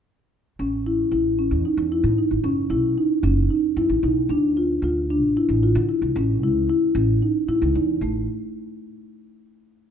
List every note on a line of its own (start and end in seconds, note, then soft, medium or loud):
0.59 1.06 A1 medium
0.59 0.81 C#4 medium
0.87 1.08 E4 medium
1.12 1.53 A1 medium
1.12 1.34 E4 medium
1.39 1.61 C#4 medium
1.51 1.63 E2 medium
1.65 1.87 D#4 medium
1.77 2.02 E2 medium
1.92 2.14 E4 medium
2.04 2.16 A2 medium
2.18 2.40 D#4 medium
2.31 2.43 G#1 medium
2.44 2.71 F#1 medium
2.44 2.66 C#4 medium
2.70 2.94 B1 medium
2.70 2.93 E4 medium
2.98 3.20 D#4 medium
3.23 3.47 F#1 medium
3.23 3.46 C#4 medium
3.50 3.72 D#4 medium
3.77 3.89 F#2 medium
3.77 3.99 E4 medium
3.89 4.02 A1 medium
4.03 4.27 B1 medium
4.03 4.26 D#4 medium
4.29 4.77 D2 medium
4.29 4.52 D4 medium
4.57 4.79 F4 medium
4.82 5.22 D2 medium
4.82 5.06 F4 medium
5.10 5.32 D4 medium
5.22 5.35 A1 medium
5.37 5.59 E4 medium
5.49 5.73 A1 medium
5.63 5.85 F4 medium
5.75 5.88 D3 medium
5.89 6.11 E4 medium
6.02 6.14 C2 medium
6.16 6.42 A1 medium
6.16 6.38 C#4 medium
6.42 6.66 C#2 medium
6.42 6.65 E4 medium
6.70 6.91 E4 medium
6.95 7.19 A1 medium
6.95 7.18 C#4 medium
7.22 7.44 D#4 medium
7.48 7.60 A2 medium
7.48 7.71 E4 medium
7.62 7.74 C#2 medium
7.75 7.99 E2 medium
7.75 7.97 D#4 medium
8.01 8.26 A1 medium
8.01 8.26 A3 medium